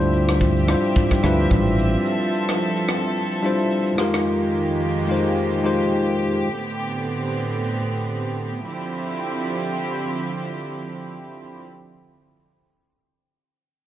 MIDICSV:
0, 0, Header, 1, 5, 480
1, 0, Start_track
1, 0, Tempo, 550459
1, 1795, Time_signature, 4, 2, 24, 8
1, 12089, End_track
2, 0, Start_track
2, 0, Title_t, "Tine electric piano"
2, 0, Program_c, 0, 4
2, 0, Note_on_c, 0, 55, 103
2, 0, Note_on_c, 0, 62, 90
2, 0, Note_on_c, 0, 64, 97
2, 0, Note_on_c, 0, 65, 93
2, 0, Note_on_c, 0, 72, 116
2, 27, Control_c, 0, 64, 127
2, 456, Note_off_c, 0, 55, 0
2, 460, Note_off_c, 0, 62, 0
2, 464, Note_off_c, 0, 64, 0
2, 468, Note_off_c, 0, 65, 0
2, 472, Note_off_c, 0, 72, 0
2, 586, Note_on_c, 0, 55, 74
2, 594, Note_on_c, 0, 62, 69
2, 602, Note_on_c, 0, 64, 66
2, 609, Note_on_c, 0, 65, 71
2, 617, Note_on_c, 0, 72, 83
2, 985, Note_off_c, 0, 55, 0
2, 988, Note_off_c, 0, 62, 0
2, 992, Note_off_c, 0, 64, 0
2, 996, Note_off_c, 0, 65, 0
2, 1000, Note_off_c, 0, 72, 0
2, 1066, Note_on_c, 0, 55, 81
2, 1074, Note_on_c, 0, 62, 75
2, 1082, Note_on_c, 0, 64, 77
2, 1089, Note_on_c, 0, 65, 76
2, 1097, Note_on_c, 0, 71, 93
2, 1844, Note_off_c, 0, 55, 0
2, 1848, Note_off_c, 0, 62, 0
2, 1852, Note_off_c, 0, 64, 0
2, 1855, Note_off_c, 0, 65, 0
2, 1859, Note_off_c, 0, 71, 0
2, 2986, Note_on_c, 0, 55, 82
2, 2994, Note_on_c, 0, 62, 73
2, 3002, Note_on_c, 0, 64, 75
2, 3009, Note_on_c, 0, 65, 75
2, 3017, Note_on_c, 0, 72, 90
2, 3385, Note_off_c, 0, 55, 0
2, 3389, Note_off_c, 0, 62, 0
2, 3392, Note_off_c, 0, 64, 0
2, 3396, Note_off_c, 0, 65, 0
2, 3400, Note_off_c, 0, 72, 0
2, 3467, Note_on_c, 0, 56, 84
2, 3474, Note_on_c, 0, 63, 78
2, 3482, Note_on_c, 0, 65, 81
2, 3487, Control_c, 0, 64, 0
2, 3489, Note_on_c, 0, 67, 77
2, 3497, Note_on_c, 0, 70, 95
2, 3664, Control_c, 0, 64, 127
2, 4244, Note_off_c, 0, 56, 0
2, 4248, Note_off_c, 0, 63, 0
2, 4252, Note_off_c, 0, 65, 0
2, 4255, Note_off_c, 0, 67, 0
2, 4259, Note_off_c, 0, 70, 0
2, 4427, Note_on_c, 0, 56, 74
2, 4434, Note_on_c, 0, 63, 69
2, 4442, Note_on_c, 0, 65, 68
2, 4450, Note_on_c, 0, 67, 68
2, 4457, Note_on_c, 0, 72, 82
2, 4825, Note_off_c, 0, 56, 0
2, 4829, Note_off_c, 0, 63, 0
2, 4832, Note_off_c, 0, 65, 0
2, 4836, Note_off_c, 0, 67, 0
2, 4840, Note_off_c, 0, 72, 0
2, 4906, Note_on_c, 0, 56, 81
2, 4914, Note_on_c, 0, 63, 75
2, 4922, Note_on_c, 0, 65, 77
2, 4929, Note_on_c, 0, 67, 78
2, 4937, Note_on_c, 0, 72, 90
2, 5631, Note_off_c, 0, 56, 0
2, 5635, Note_off_c, 0, 63, 0
2, 5639, Note_off_c, 0, 65, 0
2, 5643, Note_off_c, 0, 67, 0
2, 5646, Note_off_c, 0, 72, 0
2, 5648, Control_c, 0, 64, 0
2, 12089, End_track
3, 0, Start_track
3, 0, Title_t, "String section"
3, 0, Program_c, 1, 48
3, 0, Note_on_c, 1, 53, 74
3, 0, Note_on_c, 1, 60, 69
3, 0, Note_on_c, 1, 67, 86
3, 0, Note_on_c, 1, 76, 72
3, 1776, Note_off_c, 1, 67, 0
3, 1795, Note_on_c, 1, 69, 85
3, 3441, Note_off_c, 1, 53, 0
3, 3441, Note_off_c, 1, 60, 0
3, 3441, Note_off_c, 1, 76, 0
3, 3459, Note_off_c, 1, 69, 0
3, 3476, Note_on_c, 1, 41, 80
3, 3476, Note_on_c, 1, 51, 75
3, 3476, Note_on_c, 1, 56, 74
3, 3476, Note_on_c, 1, 58, 70
3, 3476, Note_on_c, 1, 67, 85
3, 5614, Note_off_c, 1, 41, 0
3, 5614, Note_off_c, 1, 51, 0
3, 5614, Note_off_c, 1, 56, 0
3, 5614, Note_off_c, 1, 58, 0
3, 5635, Note_on_c, 1, 45, 76
3, 5635, Note_on_c, 1, 60, 71
3, 5636, Note_on_c, 1, 50, 73
3, 5636, Note_on_c, 1, 59, 69
3, 7521, Note_off_c, 1, 67, 0
3, 7536, Note_off_c, 1, 45, 0
3, 7536, Note_off_c, 1, 60, 0
3, 7537, Note_off_c, 1, 50, 0
3, 7537, Note_off_c, 1, 59, 0
3, 7556, Note_on_c, 1, 53, 70
3, 7556, Note_on_c, 1, 60, 69
3, 7556, Note_on_c, 1, 64, 68
3, 7556, Note_on_c, 1, 67, 80
3, 7557, Note_on_c, 1, 50, 71
3, 10139, Note_off_c, 1, 50, 0
3, 10139, Note_off_c, 1, 53, 0
3, 10139, Note_off_c, 1, 60, 0
3, 10139, Note_off_c, 1, 64, 0
3, 10139, Note_off_c, 1, 67, 0
3, 12089, End_track
4, 0, Start_track
4, 0, Title_t, "Fingered electric bass"
4, 0, Program_c, 2, 33
4, 0, Note_on_c, 2, 38, 102
4, 640, Note_off_c, 2, 38, 0
4, 1076, Note_on_c, 2, 38, 97
4, 1267, Note_off_c, 2, 38, 0
4, 1315, Note_on_c, 2, 33, 93
4, 1698, Note_off_c, 2, 33, 0
4, 12089, End_track
5, 0, Start_track
5, 0, Title_t, "Drums"
5, 9, Note_on_c, 9, 82, 50
5, 96, Note_off_c, 9, 82, 0
5, 116, Note_on_c, 9, 82, 78
5, 203, Note_off_c, 9, 82, 0
5, 248, Note_on_c, 9, 82, 46
5, 250, Note_on_c, 9, 37, 96
5, 335, Note_off_c, 9, 82, 0
5, 337, Note_off_c, 9, 37, 0
5, 355, Note_on_c, 9, 82, 72
5, 356, Note_on_c, 9, 36, 92
5, 443, Note_off_c, 9, 82, 0
5, 444, Note_off_c, 9, 36, 0
5, 490, Note_on_c, 9, 82, 52
5, 577, Note_off_c, 9, 82, 0
5, 595, Note_on_c, 9, 82, 97
5, 597, Note_on_c, 9, 37, 93
5, 682, Note_off_c, 9, 82, 0
5, 684, Note_off_c, 9, 37, 0
5, 729, Note_on_c, 9, 82, 50
5, 816, Note_off_c, 9, 82, 0
5, 837, Note_on_c, 9, 36, 114
5, 838, Note_on_c, 9, 82, 70
5, 924, Note_off_c, 9, 36, 0
5, 925, Note_off_c, 9, 82, 0
5, 969, Note_on_c, 9, 36, 103
5, 969, Note_on_c, 9, 37, 92
5, 970, Note_on_c, 9, 82, 59
5, 1056, Note_off_c, 9, 36, 0
5, 1056, Note_off_c, 9, 37, 0
5, 1057, Note_off_c, 9, 82, 0
5, 1075, Note_on_c, 9, 82, 94
5, 1078, Note_on_c, 9, 37, 90
5, 1163, Note_off_c, 9, 82, 0
5, 1166, Note_off_c, 9, 37, 0
5, 1207, Note_on_c, 9, 82, 53
5, 1294, Note_off_c, 9, 82, 0
5, 1315, Note_on_c, 9, 82, 65
5, 1316, Note_on_c, 9, 36, 92
5, 1402, Note_off_c, 9, 82, 0
5, 1403, Note_off_c, 9, 36, 0
5, 1448, Note_on_c, 9, 82, 57
5, 1535, Note_off_c, 9, 82, 0
5, 1555, Note_on_c, 9, 82, 94
5, 1642, Note_off_c, 9, 82, 0
5, 1687, Note_on_c, 9, 82, 53
5, 1774, Note_off_c, 9, 82, 0
5, 1796, Note_on_c, 9, 82, 87
5, 1883, Note_off_c, 9, 82, 0
5, 1929, Note_on_c, 9, 82, 53
5, 2016, Note_off_c, 9, 82, 0
5, 2036, Note_on_c, 9, 82, 80
5, 2123, Note_off_c, 9, 82, 0
5, 2168, Note_on_c, 9, 82, 46
5, 2170, Note_on_c, 9, 37, 90
5, 2255, Note_off_c, 9, 82, 0
5, 2257, Note_off_c, 9, 37, 0
5, 2275, Note_on_c, 9, 82, 72
5, 2362, Note_off_c, 9, 82, 0
5, 2409, Note_on_c, 9, 82, 54
5, 2496, Note_off_c, 9, 82, 0
5, 2515, Note_on_c, 9, 82, 93
5, 2516, Note_on_c, 9, 37, 95
5, 2602, Note_off_c, 9, 82, 0
5, 2603, Note_off_c, 9, 37, 0
5, 2649, Note_on_c, 9, 82, 48
5, 2736, Note_off_c, 9, 82, 0
5, 2757, Note_on_c, 9, 82, 72
5, 2845, Note_off_c, 9, 82, 0
5, 2890, Note_on_c, 9, 82, 55
5, 2977, Note_off_c, 9, 82, 0
5, 2995, Note_on_c, 9, 82, 91
5, 3083, Note_off_c, 9, 82, 0
5, 3128, Note_on_c, 9, 82, 52
5, 3215, Note_off_c, 9, 82, 0
5, 3235, Note_on_c, 9, 82, 63
5, 3322, Note_off_c, 9, 82, 0
5, 3367, Note_on_c, 9, 82, 54
5, 3454, Note_off_c, 9, 82, 0
5, 3472, Note_on_c, 9, 37, 89
5, 3476, Note_on_c, 9, 82, 94
5, 3560, Note_off_c, 9, 37, 0
5, 3563, Note_off_c, 9, 82, 0
5, 3607, Note_on_c, 9, 82, 49
5, 3610, Note_on_c, 9, 37, 97
5, 3694, Note_off_c, 9, 82, 0
5, 3697, Note_off_c, 9, 37, 0
5, 12089, End_track
0, 0, End_of_file